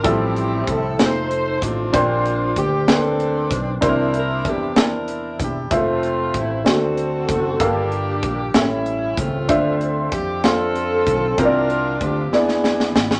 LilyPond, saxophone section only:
\new Staff \with { instrumentName = "Saxophone section" } { \time 6/8 \key f \major \tempo 4. = 64 << { g'4 a'8 c''4 f'8~ | f'4 g'8 a'4 r8 | bes'8 bes'8 g'8 bes'4 g'8 | f'4 e'8 a'4. |
g'4. e'4 f'8~ | f'8 r8 g'8 a'4. | bes'8 bes'8 g'8 gis'4 r8 | } \\ { <c' e'>4. <ees' a'>4 <c' d'>8~ | <c' d'>4 r8 <c' d'>4. | <d' e'>4. <d' e'>4. | <a c'>4. <c' fis'>4. |
<bes d'>4. <g cis'>4 <a c'>8~ | <a c'>4 r8 <c' f'>4. | <d' f'>4. <b d'>4. | } >> }